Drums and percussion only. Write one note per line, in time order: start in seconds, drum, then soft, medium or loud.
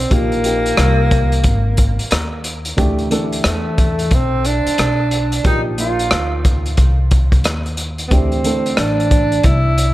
0.11 kick loud
0.11 closed hi-hat medium
0.32 closed hi-hat soft
0.44 closed hi-hat medium
0.66 closed hi-hat soft
0.77 cross-stick loud
0.77 closed hi-hat medium
1.11 kick medium
1.11 closed hi-hat medium
1.32 closed hi-hat soft
1.44 kick medium
1.44 closed hi-hat medium
1.77 kick medium
1.77 closed hi-hat medium
1.99 closed hi-hat soft
2.11 cross-stick loud
2.11 closed hi-hat loud
2.44 closed hi-hat medium
2.65 closed hi-hat soft
2.78 kick loud
2.78 closed hi-hat medium
2.99 closed hi-hat soft
3.11 closed hi-hat medium
3.32 closed hi-hat soft
3.44 cross-stick loud
3.44 closed hi-hat medium
3.78 kick medium
3.78 closed hi-hat medium
3.99 closed hi-hat soft
4.11 kick medium
4.11 closed hi-hat medium
4.45 closed hi-hat medium
4.67 closed hi-hat medium
4.78 cross-stick loud
4.78 closed hi-hat loud
5.11 closed hi-hat medium
5.32 closed hi-hat soft
5.44 kick loud
5.44 closed hi-hat medium
5.78 closed hi-hat medium
5.99 closed hi-hat soft
6.11 cross-stick loud
6.11 closed hi-hat medium
6.45 kick medium
6.45 closed hi-hat medium
6.66 closed hi-hat soft
6.77 kick medium
6.77 closed hi-hat medium
7.11 kick medium
7.11 closed hi-hat medium
7.32 kick medium
7.32 closed hi-hat soft
7.44 cross-stick loud
7.44 closed hi-hat medium
7.66 closed hi-hat soft
7.77 closed hi-hat medium
7.98 closed hi-hat soft
8.11 kick loud
8.11 closed hi-hat medium
8.32 closed hi-hat soft
8.44 closed hi-hat medium
8.66 closed hi-hat soft
8.77 cross-stick loud
8.77 closed hi-hat medium
9.00 closed hi-hat soft
9.11 kick medium
9.11 closed hi-hat medium
9.32 closed hi-hat soft
9.43 kick medium
9.43 closed hi-hat medium
9.78 closed hi-hat medium